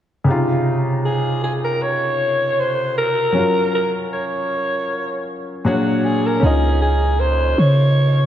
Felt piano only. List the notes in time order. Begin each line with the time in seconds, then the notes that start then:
0.24 C3 C#3
0.28 D#4 F4
3.32 F#3 C#4
3.36 F4 A#4
5.64 A#2 F#3 D4 G#4 C#5
6.40 C#4 D#4
6.44 F4 D#5